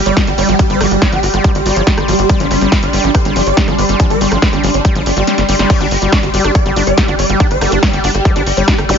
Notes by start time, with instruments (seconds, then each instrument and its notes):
Already playing: ambient pad G3 G4 D5
0.06 analog synth bass G1, acid bass G3, digital synth lead D5, ambient pad C6, closed hi-hat
0.17 acid bass F3, digital synth lead G4, kick, cross-stick, snare, closed hi-hat
0.27 analog synth bass G1, digital synth lead G4, closed hi-hat
0.38 analog synth bass G1, acid bass G3, digital synth lead D5, open hi-hat
0.49 analog synth bass G1, acid bass F3, digital synth lead G4, closed hi-hat
0.59 digital synth lead G4, kick, closed hi-hat
0.70 analog synth bass G1, acid bass G3, digital synth lead C5, closed hi-hat
0.80 analog synth bass G1, acid bass F3, digital synth lead G4, cross-stick, open hi-hat
0.91 analog synth bass G1, digital synth lead G4, closed hi-hat
1.02 acid bass G3, digital synth lead D5, kick, snare, closed hi-hat
1.12 analog synth bass G1, acid bass F3, digital synth lead G4, closed hi-hat
1.23 analog synth bass G1, digital synth lead G4, open hi-hat
1.34 analog synth bass G1, acid bass G3, digital synth lead G4, cross-stick, closed hi-hat
1.44 acid bass F3, kick, closed hi-hat
1.55 analog synth bass G1, digital synth lead G4, closed hi-hat
1.66 analog synth bass G1, acid bass G3, digital synth lead G4, open hi-hat
1.76 analog synth bass G1, acid bass F3, digital synth lead D5, closed hi-hat
1.87 digital synth lead G4, kick, snare, closed hi-hat
1.98 analog synth bass G1, acid bass G3, cross-stick, closed hi-hat
2.08 analog synth bass G1, acid bass F3, digital synth lead G4, open hi-hat
2.19 analog synth bass G1, digital synth lead G4, closed hi-hat
2.29 acid bass G3, digital synth lead C5, kick, closed hi-hat
2.40 analog synth bass G1, acid bass F3, digital synth lead D4, closed hi-hat
2.51 analog synth bass G1, digital synth lead D4, cross-stick, open hi-hat
2.61 analog synth bass G1, acid bass G3, digital synth lead D4, closed hi-hat
2.72 acid bass F3, digital synth lead C5, kick, snare, closed hi-hat
2.83 analog synth bass G1, digital synth lead D4, closed hi-hat
2.93 analog synth bass G1, acid bass G3, digital synth lead D4, open hi-hat
3.04 analog synth bass G1, acid bass F3, digital synth lead D4, closed hi-hat
3.15 digital synth lead C5, kick, cross-stick, closed hi-hat
3.25 analog synth bass G1, acid bass G3, digital synth lead D4, closed hi-hat
3.36 analog synth bass G1, acid bass F3, digital synth lead D4, open hi-hat
3.47 analog synth bass G1, digital synth lead D5, closed hi-hat
3.57 acid bass G3, digital synth lead D4, kick, snare, closed hi-hat
3.68 analog synth bass G1, acid bass F3, digital synth lead D4, cross-stick, closed hi-hat
3.78 analog synth bass G1, digital synth lead C5, open hi-hat
3.89 analog synth bass G1, acid bass G3, digital synth lead D4, closed hi-hat
4.00 acid bass F3, digital synth lead D4, kick, closed hi-hat
4.10 analog synth bass G1, digital synth lead A#4, closed hi-hat
4.21 analog synth bass G1, acid bass G3, digital synth lead D4, open hi-hat
4.32 analog synth bass G1, acid bass F3, digital synth lead D4, cross-stick, closed hi-hat
4.42 digital synth lead C5, kick, snare, closed hi-hat
4.53 analog synth bass G1, acid bass G3, digital synth lead D4, closed hi-hat
4.63 analog synth bass G1, acid bass F3, digital synth lead D4, open hi-hat
4.74 analog synth bass G1, digital synth lead D4, closed hi-hat
4.85 acid bass G3, kick, cross-stick, closed hi-hat
4.95 analog synth bass G1, acid bass F3, digital synth lead D4, closed hi-hat
5.06 analog synth bass G1, digital synth lead D4, open hi-hat
5.17 analog synth bass G1, acid bass G3, digital synth lead G4, closed hi-hat
5.27 acid bass G3, digital synth lead D4, snare, closed hi-hat
5.38 analog synth bass G1, snare, closed hi-hat
5.49 analog synth bass G1, acid bass G3, digital synth lead D4, open hi-hat
5.59 analog synth bass G1, acid bass G3, digital synth lead D4, snare, closed hi-hat
5.70 acid bass G3, ambient pad G3, digital synth lead D5, kick, closed hi-hat, crash
5.81 analog synth bass G1, acid bass D4, digital synth lead G4, cross-stick, closed hi-hat
5.91 analog synth bass G1, digital synth lead G4, open hi-hat
6.02 analog synth bass G1, acid bass G3, digital synth lead G4, closed hi-hat
6.12 acid bass D4, digital synth lead D5, kick, snare, closed hi-hat
6.23 analog synth bass G1, digital synth lead G4, closed hi-hat
6.34 analog synth bass G1, acid bass G3, digital synth lead G4, open hi-hat
6.44 analog synth bass G1, acid bass D4, digital synth lead G4, cross-stick, closed hi-hat
6.55 digital synth lead D5, kick, closed hi-hat
6.66 analog synth bass G1, acid bass G3, digital synth lead G4, closed hi-hat
6.76 analog synth bass G1, acid bass D4, digital synth lead G4, open hi-hat
6.87 analog synth bass G1, wobble bass C4, digital synth lead D5, ambient pad G5, closed hi-hat
6.98 acid bass G3, wobble bass C4, digital synth lead G4, kick, cross-stick, snare, closed hi-hat
7.08 analog synth bass G1, acid bass D4, digital synth lead G4, closed hi-hat
7.19 analog synth bass G1, digital synth lead D5, open hi-hat
7.29 analog synth bass G1, acid bass G3, digital synth lead G4, closed hi-hat
7.40 acid bass D4, digital synth lead G4, kick, closed hi-hat
7.51 analog synth bass G1, digital synth lead C5, closed hi-hat
7.61 analog synth bass G1, acid bass G3, wobble bass A#3, digital synth lead G4, cross-stick, open hi-hat
7.72 analog synth bass G1, acid bass D4, digital synth lead G4, closed hi-hat
7.83 digital synth lead D5, kick, snare, closed hi-hat
7.93 analog synth bass G1, acid bass G3, digital synth lead G4, closed hi-hat
8.04 analog synth bass G1, acid bass D4, digital synth lead G4, open hi-hat
8.15 analog synth bass G1, digital synth lead G4, cross-stick, closed hi-hat
8.25 acid bass G3, wobble bass C4, kick, closed hi-hat
8.36 analog synth bass G1, wobble bass C4, acid bass D4, digital synth lead G4, closed hi-hat
8.46 analog synth bass G1, digital synth lead G4, open hi-hat
8.57 analog synth bass G1, acid bass G3, digital synth lead D5, closed hi-hat
8.68 acid bass D4, digital synth lead G4, kick, snare, closed hi-hat
8.78 analog synth bass G1, cross-stick, closed hi-hat
8.89 analog synth bass G1, acid bass G3, wobble bass D4, digital synth lead G4, open hi-hat, zap